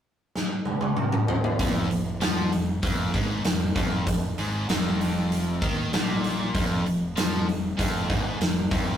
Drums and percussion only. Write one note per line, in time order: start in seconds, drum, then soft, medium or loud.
0.35 snare medium
0.65 high tom medium
0.81 high tom medium
0.97 mid tom medium
1.12 mid tom medium
1.28 floor tom loud
1.44 floor tom medium
1.59 kick loud
1.59 open hi-hat medium
1.91 open hi-hat soft
2.21 snare loud
2.21 open hi-hat medium
2.52 open hi-hat soft
2.83 kick loud
2.83 open hi-hat medium
3.14 kick medium
3.14 open hi-hat soft
3.44 snare loud
3.44 open hi-hat medium
3.76 kick loud
3.76 open hi-hat medium
4.07 kick medium
4.07 open hi-hat medium
4.38 open hi-hat soft
4.69 snare loud
4.69 open hi-hat medium
5.01 open hi-hat soft
5.32 open hi-hat medium
5.62 kick loud
5.62 open hi-hat soft
5.93 snare loud
5.93 open hi-hat medium
6.24 open hi-hat soft
6.55 kick loud
6.55 open hi-hat medium
6.86 open hi-hat soft
7.17 snare loud
7.17 open hi-hat medium
7.49 open hi-hat soft
7.79 kick medium
7.79 open hi-hat medium
8.10 kick loud
8.10 open hi-hat soft
8.41 snare loud
8.41 open hi-hat medium
8.71 kick loud
8.71 open hi-hat soft